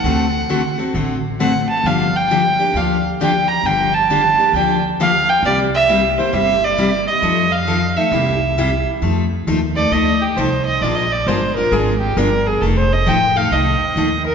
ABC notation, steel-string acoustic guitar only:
X:1
M:4/4
L:1/8
Q:"Swing" 1/4=134
K:Fmix
V:1 name="Steel-string acoustic guitar"
[D,A,C^FA] z [D,A,CFA] [CFA] [D,A,CFA] z [D,A,CFA] z | [D,F,B,DG] z [D,F,B,DG] [B,DG] [D,F,B,DG] z [D,F,B,DG] z | [D,F,B,DG] z [D,F,B,DG] [B,DG] [D,F,B,DG] z [D,F,B,DG] z | [C,G,B,=EG] z [C,G,B,EG] [B,EG] [C,G,B,EG] z [C,G,B,EG] z |
[F,A,EA] z [F,A,EA] [A,EA] [C,G,B,=EG] z [C,G,B,EG] z | [F,A,EA] z [F,A,EA] [A,EA] [F,A,EA] z [F,A,EA] z | [F,_A,DFB] z [F,A,DFB] [DFB] [F,A,DFB] z [F,A,DFB] z | [F,A,EA] z [F,A,EA] [A,EA] [F,A,EA] z [F,A,EA] z |]